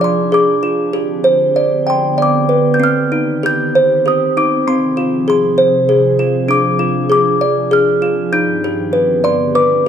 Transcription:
0.00 0.89 F3 medium
0.00 0.32 D4 medium
0.00 0.91 D4 medium
0.00 0.62 F4 medium
0.00 0.31 G#4 medium
0.00 0.89 G#4 medium
0.00 0.94 D5 medium
0.04 0.17 C6 medium
0.32 0.94 G#4 medium
0.32 2.15 D6 medium
0.63 0.94 F4 medium
0.92 1.54 D3 medium
0.92 1.54 C4 medium
0.92 2.78 G4 medium
0.92 1.55 G4 medium
1.24 1.55 C5 medium
1.56 2.79 D3 medium
1.56 2.79 B3 medium
1.56 2.17 D5 medium
1.87 2.80 G5 medium
1.87 2.20 C6 medium
2.18 2.80 D5 medium
2.22 2.77 D6 medium
2.49 2.80 B4 medium
2.74 2.81 G6 medium
2.80 4.65 D#3 medium
2.80 4.05 C4 medium
2.80 6.47 C4 medium
2.80 4.65 G4 medium
2.80 3.46 F6 medium
3.12 4.36 D#4 medium
3.43 4.04 G4 medium
3.43 4.03 G6 loud
3.75 4.68 C5 medium
4.06 4.67 G4 medium
4.06 4.38 D#6 medium
4.37 4.67 D#4 medium
4.37 4.68 D6 medium
4.67 6.48 C3 medium
4.67 6.48 F3 medium
4.67 5.89 C4 medium
4.67 8.29 G#4 medium
4.67 5.28 C6 medium
4.97 6.18 F4 medium
5.28 5.88 G#4 medium
5.28 6.16 C6 medium
5.58 6.49 C5 medium
5.89 6.50 G#4 medium
6.19 6.50 F4 medium
6.48 8.31 F3 medium
6.48 7.71 D4 medium
6.48 8.31 D4 medium
6.48 7.10 D6 medium
6.79 8.01 F4 medium
7.09 7.70 G#4 medium
7.09 7.74 D6 medium
7.41 8.32 D5 medium
7.71 8.32 G#4 medium
7.71 8.35 F6 medium
8.02 8.32 F4 medium
8.32 8.93 G2 medium
8.32 8.93 D#3 medium
8.32 8.93 C4 medium
8.32 8.94 D#4 medium
8.32 8.92 G4 medium
8.32 9.27 G6 medium
8.64 8.94 G4 medium
8.92 9.88 D3 medium
8.92 9.88 B3 medium
8.92 9.88 G4 medium
8.92 9.54 B4 medium
9.24 9.88 D5 medium
9.24 9.56 C6 medium
9.55 9.88 B4 medium
9.55 9.88 D6 medium

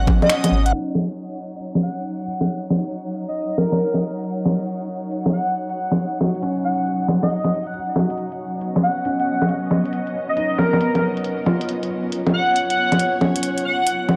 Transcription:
0.00 0.72 F#3 medium
0.00 0.73 B3 medium
0.00 2.17 C#4 medium
0.00 0.73 D#4 medium
0.00 1.90 D#5 medium
0.07 kick loud
0.07 low bongo medium
0.22 0.63 D#5 medium
0.22 low bongo medium
0.29 0.91 C#4 medium
0.29 finger snap medium
0.29 closed hi-hat medium
0.44 closed hi-hat medium
0.44 low bongo medium
0.51 0.72 G#1 medium
0.66 0.73 F#5 medium
0.66 closed hi-hat soft
0.73 14.16 F#3 medium
0.73 2.22 D#4 medium
0.73 closed hi-hat medium
0.87 8.81 D#4 medium
0.87 7.74 C#5 medium
0.95 low bongo medium
1.10 closed hi-hat soft
1.17 9.01 F#5 medium
1.17 closed hi-hat soft
1.31 closed hi-hat soft
1.61 closed hi-hat soft
1.75 low bongo medium
1.82 2.06 F#5 medium
2.04 closed hi-hat soft
2.19 2.42 F#5 medium
2.19 closed hi-hat medium
2.41 closed hi-hat soft
2.41 low bongo medium
2.48 closed hi-hat medium
2.70 low bongo medium
2.85 closed hi-hat medium
2.92 closed hi-hat soft
3.07 closed hi-hat soft
3.29 3.56 D#5 medium
3.36 closed hi-hat medium
3.58 4.02 A#4 medium
3.58 low bongo medium
3.72 low bongo soft
3.79 closed hi-hat soft
3.94 closed hi-hat medium
3.94 low bongo soft
4.16 closed hi-hat soft
4.24 closed hi-hat medium
4.46 low bongo medium
4.60 closed hi-hat medium
4.67 closed hi-hat soft
4.82 closed hi-hat soft
5.11 closed hi-hat medium
5.26 low bongo medium
5.33 5.56 F#5 medium
5.55 closed hi-hat soft
5.69 5.92 F#5 medium
5.69 closed hi-hat soft
5.92 closed hi-hat soft
5.92 low bongo medium
5.99 closed hi-hat soft
6.21 7.69 F#4 medium
6.21 low bongo medium
6.35 closed hi-hat soft
6.43 7.91 C#4 medium
6.43 closed hi-hat soft
6.57 closed hi-hat soft
6.65 7.01 F#5 medium
6.86 closed hi-hat soft
7.08 low bongo medium
7.23 7.64 D#5 medium
7.23 low bongo soft
7.30 closed hi-hat soft
7.44 closed hi-hat soft
7.44 low bongo soft
7.67 7.80 F#5 medium
7.67 closed hi-hat soft
7.74 closed hi-hat soft
7.96 9.44 F#3 medium
7.96 low bongo medium
8.10 closed hi-hat soft
8.18 closed hi-hat soft
8.25 14.16 C#4 medium
8.32 closed hi-hat soft
8.54 14.16 B3 medium
8.61 12.53 D#5 medium
8.61 closed hi-hat soft
8.76 low bongo medium
8.83 9.07 F#5 medium
9.05 10.54 C#4 medium
9.05 closed hi-hat soft
9.20 9.42 F#5 medium
9.20 closed hi-hat soft
9.42 closed hi-hat soft
9.42 low bongo medium
9.49 closed hi-hat soft
9.71 low bongo medium
9.85 closed hi-hat soft
9.93 closed hi-hat soft
10.07 closed hi-hat soft
10.29 10.57 D#5 medium
10.37 11.85 D#4 soft
10.37 closed hi-hat soft
10.58 11.02 A#4 medium
10.58 low bongo medium
10.73 low bongo soft
10.80 12.29 B3 medium
10.80 closed hi-hat soft
10.95 closed hi-hat soft
10.95 low bongo soft
11.17 closed hi-hat soft
11.24 closed hi-hat medium
11.46 12.95 F4 medium
11.46 low bongo medium
11.61 closed hi-hat medium
11.69 closed hi-hat medium
11.83 closed hi-hat soft
12.12 closed hi-hat soft
12.27 low bongo medium
12.34 12.57 F#5 medium
12.40 14.16 C#5 medium
12.56 closed hi-hat soft
12.70 12.93 F#5 medium
12.70 closed hi-hat soft
12.92 closed hi-hat soft
12.92 low bongo medium
12.99 closed hi-hat medium
13.21 14.16 C#4 medium
13.21 low bongo medium
13.36 closed hi-hat medium
13.43 closed hi-hat medium
13.58 closed hi-hat soft
13.65 14.01 F#5 medium
13.87 closed hi-hat medium
14.09 low bongo medium

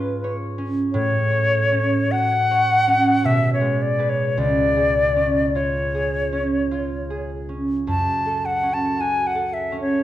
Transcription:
0.00 0.98 G#2 medium
0.00 0.57 C#4 medium
0.00 0.98 F4 medium
0.00 0.36 B4 medium
0.00 0.23 C#5 soft
0.24 1.30 C#5 soft
0.58 1.71 C#4 soft
0.93 3.29 A2 medium
0.93 2.13 C#5 medium
1.31 2.50 C#5 soft
1.72 2.86 C#4 soft
2.11 3.29 F#4 soft
2.11 3.27 F#5 medium
2.51 3.29 C#5 soft
2.88 3.29 C#4 soft
3.24 4.43 B2 medium
3.24 3.53 E5 medium
3.53 3.83 C#5 medium
3.61 7.51 G#3 soft
3.82 4.11 D5 medium
3.99 4.75 G#4 soft
3.99 4.43 B4 soft
4.09 4.40 C#5 medium
4.37 7.93 C#2 soft
4.37 5.58 D5 medium
4.77 5.93 G#4 soft
5.16 6.31 C#4 soft
5.55 6.70 F4 soft
5.55 7.31 C#5 medium
5.95 7.09 G#4 soft
6.33 7.48 C#4 soft
6.71 7.94 F4 soft
7.10 7.94 G#4 soft
7.49 8.62 C#4 soft
7.87 10.03 F#2 soft
7.87 8.47 A5 medium
8.26 9.34 A4 soft
8.45 8.75 F#5 medium
8.63 9.71 C#4 soft
8.74 9.02 A5 medium
9.00 10.03 F#4 soft
9.00 9.28 G#5 medium
9.27 9.55 F#5 medium
9.35 10.03 A4 soft
9.54 9.80 E5 medium
9.72 10.03 C#4 soft
9.81 10.03 C#5 medium

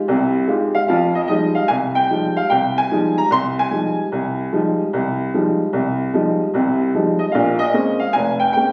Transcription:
0.08 0.43 C2 medium
0.08 0.43 C3 medium
0.48 0.76 G#3 medium
0.48 0.77 D#4 soft
0.48 0.77 F4 soft
0.48 0.77 G4 medium
0.75 0.80 F5 medium
0.88 1.24 F2 medium
0.88 1.24 F3 medium
0.88 1.14 F5 medium
1.15 1.26 D#5 medium
1.28 1.58 F3 medium
1.28 1.58 G3 soft
1.28 1.58 G#3 soft
1.28 1.58 D#4 medium
1.28 1.56 D#5 medium
1.55 1.69 F5 medium
1.68 2.05 C2 medium
1.68 1.74 G#5 medium
1.95 2.33 G5 medium
2.11 2.39 F3 soft
2.11 2.39 G3 soft
2.11 2.39 G#3 soft
2.11 2.39 D#4 soft
2.37 2.50 F5 medium
2.50 2.86 C2 medium
2.50 2.75 G5 medium
2.78 3.15 G#5 medium
2.91 3.19 F3 medium
2.91 3.19 G3 soft
2.91 3.19 G#3 medium
2.91 3.19 D#4 medium
3.18 3.30 A#5 medium
3.30 3.66 C2 medium
3.30 3.38 C6 medium
3.59 4.75 G#5 medium
3.71 3.99 F3 soft
3.71 3.99 G3 soft
3.71 4.00 G#3 soft
3.71 4.00 D#4 soft
4.12 4.47 C2 medium
4.52 4.80 F3 medium
4.52 4.81 G3 soft
4.52 4.81 G#3 soft
4.52 4.81 D#4 medium
4.93 5.28 C2 medium
5.34 5.62 F3 soft
5.34 5.62 G3 soft
5.34 5.62 G#3 soft
5.34 5.62 D#4 soft
5.73 6.08 C2 medium
6.14 6.42 F3 soft
6.14 6.42 G3 soft
6.14 6.42 G#3 soft
6.14 6.42 D#4 medium
6.54 6.89 C2 medium
6.54 6.88 C3 medium
6.94 7.22 F3 soft
6.94 7.22 G3 soft
6.94 7.22 G#3 soft
6.94 7.22 D#4 soft
7.19 7.32 D#5 medium
7.32 7.69 A#1 medium
7.32 7.69 A#2 medium
7.32 7.58 F5 medium
7.59 8.01 D#5 medium
7.74 8.02 G#3 medium
7.74 8.02 A#3 soft
7.74 8.02 C4 soft
7.74 8.02 C#4 medium
8.00 8.14 F5 medium
8.13 8.50 F1 medium
8.13 8.41 G#5 medium
8.40 8.51 G5 medium
8.53 8.72 G#3 soft
8.53 8.72 A#3 soft
8.53 8.72 C4 soft
8.53 8.72 G5 medium
8.57 8.72 C#4 soft

